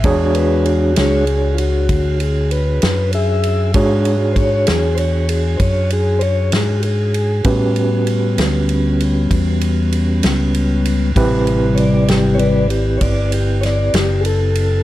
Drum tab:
RD |xxxxxxxxxxxx|xxxxxxxxxxxx|xxxxxxxxxxxx|xxxxxxxxxxxx|
SD |---o-----o--|---o-----o--|---o-----o--|---o----oo--|
BD |o-----o-----|o-o---o-----|o-----o-----|o-----o-----|